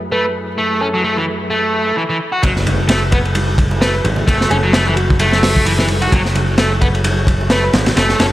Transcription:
Already playing: tonewheel organ F#2 F#3 A3 E4 G#4 B4
0.12 overdriven electric guitar A3, soft synth lead B4
0.25 soft synth lead B4
0.58 overdriven electric guitar A3
0.81 overdriven electric guitar C#4, soft synth lead A4
0.94 overdriven electric guitar F#3, soft synth lead A4
1.04 overdriven electric guitar A3
1.17 overdriven electric guitar E3
1.50 overdriven electric guitar A3
1.96 overdriven electric guitar E3
2.09 overdriven electric guitar E3
2.32 overdriven electric guitar F#4
2.42 picked electric bass F#1, overdriven electric guitar F#3, tonewheel organ F#3 E4 G#4 A4 B4, kick, ride, impact
2.56 snare
2.66 ride, high conga, low conga
2.89 overdriven electric guitar A3, snare, ride
3.02 high conga
3.12 overdriven electric guitar B3, kick, ride
3.25 ride
3.35 ride, high conga
3.58 kick, ride
3.71 muted conga, high conga
3.81 overdriven electric guitar A3, soft synth lead B4, snare, ride
3.95 soft synth lead B4
4.04 picked electric bass G#1, ride, high conga
4.16 muted conga, low conga
4.27 picked electric bass F#1, overdriven electric guitar A3, kick, ride
4.41 snare
4.50 picked electric bass F#1, overdriven electric guitar C#4, soft synth lead A4, ride, high conga, low conga
4.63 overdriven electric guitar F#3
4.73 overdriven electric guitar A3, snare, ride
4.87 overdriven electric guitar E3, high conga
4.97 soft synth lead F#4, ride, muted conga
5.10 kick
5.19 overdriven electric guitar A3, ride, high conga
5.32 snare
5.43 snare, open hi-hat
5.56 kick, high conga
5.66 overdriven electric guitar E3, ride
5.79 overdriven electric guitar E3, snare
5.88 ride, high conga
6.02 overdriven electric guitar F#4, ride, muted conga, low conga
6.12 picked electric bass F#1, overdriven electric guitar F#3, tonewheel organ C#5, kick, ride
6.25 snare
6.35 ride, high conga, low conga
6.58 overdriven electric guitar A3, snare, ride
6.72 high conga
6.81 overdriven electric guitar B3, kick, ride
6.95 ride
7.04 ride, high conga
7.27 kick, ride
7.41 muted conga, high conga
7.50 overdriven electric guitar A3, soft synth lead B4, snare, ride
7.63 soft synth lead B4
7.73 picked electric bass G#1, snare, ride, high conga
7.86 snare, ride, muted conga, low conga
7.97 picked electric bass F#1, overdriven electric guitar A3, snare, ride
8.09 snare
8.19 picked electric bass F#1, overdriven electric guitar C#4, soft synth lead A4, snare, ride, high conga, low conga

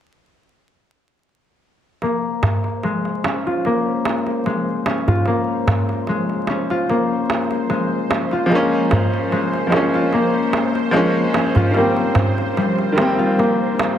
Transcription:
1.99 harp A#3, synth drone C5, darbuka tek
2.43 darbuka tek, darbuka dum
2.64 darbuka tek
2.83 harp G#3, darbuka tek
3.05 darbuka tek
3.24 harp C#4, darbuka tek
3.46 harp F4, darbuka tek
3.65 harp A#3, darbuka tek
4.05 darbuka tek
4.27 darbuka tek
4.46 harp G#3, darbuka tek
4.86 harp C#4, darbuka tek
5.08 harp F4, darbuka tek, darbuka dum
5.26 harp A#3, darbuka tek
5.67 darbuka tek, darbuka dum
5.89 darbuka tek
6.07 harp G#3, darbuka tek
6.30 darbuka tek
6.47 harp C#4, darbuka tek
6.70 harp F4, darbuka tek
6.89 harp A#3, darbuka tek
7.30 darbuka tek
7.51 darbuka tek
7.69 harp G#3, darbuka tek
8.10 harp C#4, darbuka tek
8.31 harp F4, darbuka tek
8.46 upright piano F3 G#3
8.51 harp A#3, upright piano A#3, darbuka tek
8.55 upright piano C#4
8.91 darbuka tek, darbuka dum
9.14 darbuka tek
9.32 harp G#3, darbuka tek
9.54 darbuka tek
9.67 upright piano F3 G#3
9.72 upright piano A#3, harp C#4, darbuka tek
9.76 upright piano C#4
9.94 harp F4, darbuka tek
10.13 harp A#3, darbuka tek
10.53 darbuka tek
10.75 darbuka tek
10.91 upright piano F3 G#3 A#3, harp G#3, darbuka tek
10.96 upright piano C#4
11.34 harp C#4, darbuka tek
11.55 harp F4, darbuka tek, darbuka dum
11.71 upright piano D#3 G3, darbuka tek
11.77 harp A#3, upright piano A#3 C4
11.97 darbuka tek
12.15 darbuka tek, darbuka dum
12.38 darbuka tek
12.57 harp G3, darbuka tek
12.79 darbuka tek
12.92 upright piano D#3 G3
12.97 upright piano A#3, harp C4, darbuka tek
13.02 upright piano C4
13.18 harp F4, darbuka tek
13.38 harp A#3, darbuka tek
13.79 darbuka tek

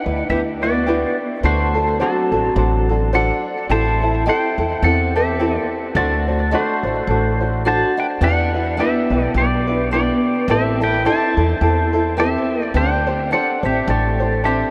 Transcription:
Already playing: steel-string acoustic guitar D4, pedal steel guitar B4 F#5
0.06 upright bass D2, ukulele D4 E4 B4
0.29 upright bass D2, steel-string acoustic guitar B3, ukulele D4 E4 G4 B4, pedal steel guitar G4 E5
0.62 steel-string acoustic guitar B3, ukulele D4 E4 B4, pedal steel guitar F#4 D5
0.86 ukulele D4 E4 G4 B4
1.43 upright bass D2, steel-string acoustic guitar A3, ukulele D4 F#4 A4 C5, pedal steel guitar F#4 C5
1.74 ukulele D4 F#4 A4
2.00 steel-string acoustic guitar F#3, pedal steel guitar C4 A4, ukulele D4 F#4 A4 C5
2.32 upright bass A1, ukulele D4 F#4 A4
2.56 upright bass A1, ukulele D4 F#4 A4 C5
2.89 ukulele D4 F#4 A4
3.13 ukulele D4 F#4 A4 C5, steel-string acoustic guitar D4, pedal steel guitar A4 F#5
3.69 upright bass A1, ukulele C4 E4 G4 A4, steel-string acoustic guitar E4, pedal steel guitar C5 A5
4.02 ukulele C4 E4 A4
4.26 ukulele C4 E4 G4 A4, steel-string acoustic guitar E4, pedal steel guitar C5 G5
4.58 upright bass E2, ukulele C4 E4 A4
4.83 upright bass E2, steel-string acoustic guitar C4, ukulele C4 E4 G4 A4, pedal steel guitar A4 F#5
5.15 steel-string acoustic guitar C4, ukulele C4 E4 A4, pedal steel guitar G4 E5
5.39 ukulele C4 E4 G4 A4
5.56 steel-string acoustic guitar A#3, pedal steel guitar D5
5.95 upright bass D2, steel-string acoustic guitar A3, ukulele D4 F#4 A4 C5, pedal steel guitar F#4 D5
6.28 ukulele D4 F#4 C5
6.51 steel-string acoustic guitar A3, ukulele D4 F#4 A4 C5, pedal steel guitar F#4 C5
6.83 upright bass A1, ukulele D4 F#4 C5
7.07 upright bass A1, ukulele D4 F#4 A4 C5
7.41 ukulele D4 F#4 C5
7.65 ukulele D4 F#4 A4 C5, steel-string acoustic guitar F#4, pedal steel guitar C5 A5
7.97 steel-string acoustic guitar E4, pedal steel guitar B4 G5
8.21 upright bass E2, steel-string acoustic guitar D4, ukulele D4 E4 G4 B4, pedal steel guitar B4 F#5
8.54 ukulele D4 E4 B4
8.77 steel-string acoustic guitar B3, ukulele D4 E4 G4 B4, pedal steel guitar G4 E5
9.10 upright bass B1, ukulele D4 E4 B4
9.19 steel-string acoustic guitar A3
9.25 pedal steel guitar D5
9.34 upright bass B1, steel-string acoustic guitar B3, ukulele D4 E4 G4 B4, pedal steel guitar G4 D5
9.67 ukulele D4 E4 B4
9.91 steel-string acoustic guitar B3, ukulele D4 E4 G4 B4, pedal steel guitar G4 D5
10.48 upright bass A1, steel-string acoustic guitar C4, ukulele C4 E4 G4 A4, pedal steel guitar G4 E5
10.80 ukulele C4 E4 A4, steel-string acoustic guitar E4, pedal steel guitar B4 G5
11.05 ukulele C4 E4 G4 A4, steel-string acoustic guitar E4, pedal steel guitar C5 A5
11.37 upright bass E2, ukulele C4 E4 A4
11.61 upright bass E2, ukulele C4 E4 G4 A4
11.93 ukulele C4 E4 A4
12.17 steel-string acoustic guitar C4, ukulele C4 E4 G4 A4, pedal steel guitar E5
12.21 pedal steel guitar G4
12.59 steel-string acoustic guitar A#3
12.65 pedal steel guitar D5
12.74 upright bass D2, steel-string acoustic guitar D4, ukulele D4 G4 A4 C5, pedal steel guitar C5 G5
13.07 ukulele D4 G4 C5
13.31 steel-string acoustic guitar D4, ukulele D4 G4 A4 C5, pedal steel guitar A4 F#5
13.63 upright bass A1, steel-string acoustic guitar C4, ukulele D4 G4 C5, pedal steel guitar G4 E5
13.87 upright bass A1, steel-string acoustic guitar A3, ukulele D4 G4 A4 C5, pedal steel guitar G4 D5
14.20 ukulele D4 G4 C5
14.44 steel-string acoustic guitar C4, ukulele D4 G4 A4 C5, pedal steel guitar G4 E5

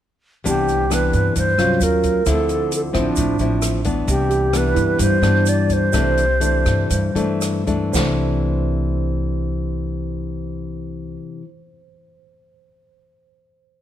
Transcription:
0.44 upright bass C2, nylon-string guitar C3 E3 B3 D4, alto flute G4, kick, closed hi-hat, shaker
0.68 closed hi-hat, shaker
0.90 nylon-string guitar E3 B3 D4, alto flute B4, cross-stick, closed hi-hat, shaker
1.13 upright bass G2, kick, closed hi-hat, shaker
1.36 upright bass G2, nylon-string guitar G2, alto flute C5, kick, closed hi-hat, shaker
1.58 upright bass C2, nylon-string guitar F#3 C#4 F4, cross-stick, closed hi-hat, shaker
1.80 upright bass D#2, alto flute A#4, closed hi-hat, shaker
2.03 kick, closed hi-hat, shaker
2.26 upright bass D2, nylon-string guitar D3 F3 C4 E4, alto flute A4, kick, cross-stick, closed hi-hat, shaker
2.49 closed hi-hat, shaker
2.72 closed hi-hat, shaker
2.76 alto flute A4
2.93 upright bass A1, nylon-string guitar F3 C4 E4, kick, cross-stick, closed hi-hat, shaker
2.98 alto flute D4
3.16 upright bass A1, nylon-string guitar A2, kick, closed hi-hat, shaker
3.39 upright bass A1, nylon-string guitar F3 C4 E4, closed hi-hat, shaker
3.62 cross-stick, closed hi-hat, shaker
3.84 nylon-string guitar E3 B3 D4, kick, closed hi-hat, shaker
4.08 upright bass C2, nylon-string guitar C3, alto flute G4, kick, closed hi-hat, shaker
4.30 tine electric piano G4, closed hi-hat, shaker
4.53 nylon-string guitar E3 B3 D4, alto flute B4, cross-stick, closed hi-hat, shaker
4.75 upright bass G2, tine electric piano E4, kick, closed hi-hat, shaker
4.99 nylon-string guitar G2, upright bass G2, alto flute C5, kick, closed hi-hat, shaker
5.22 upright bass G2, nylon-string guitar E3 B3 D4, cross-stick, closed hi-hat, shaker
5.46 alto flute D5, closed hi-hat, shaker
5.69 alto flute C5, kick, closed hi-hat, shaker
5.93 upright bass C2, nylon-string guitar C3 E3 A3 D4, tine electric piano C5, kick, cross-stick, closed hi-hat, shaker
6.17 closed hi-hat, shaker
6.40 nylon-string guitar E3 A3 D4, closed hi-hat, shaker
6.66 upright bass G2, kick, cross-stick, closed hi-hat, shaker
6.90 nylon-string guitar G2, upright bass G2, kick, closed hi-hat, shaker
7.15 upright bass G2, nylon-string guitar E3 A3 D4, closed hi-hat, shaker
7.41 cross-stick, closed hi-hat, shaker
7.67 nylon-string guitar E3 A3 D4, kick, closed hi-hat, shaker
7.92 upright bass C2, nylon-string guitar C3 E3, tine electric piano C5, kick, snare, splash, shaker
7.96 nylon-string guitar A3 D4

